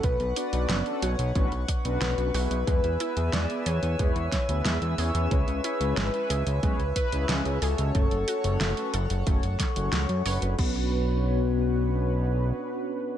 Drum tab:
CC |----------------|----------------|----------------|----------------|
HH |xxxxxxxxxxxxxxox|xxxxxxxxxxxxxxox|xxxxxxxxxxxxxxox|xxxxxxxxxxxxxxox|
SD |----o-------o---|----o-----o-o---|----o-------o---|----o-----o-o---|
BD |o-------o-o-----|o-------o-o-----|o-------o-o-----|o-------o-o-----|

CC |x---------------|
HH |----------------|
SD |----------------|
BD |o---------------|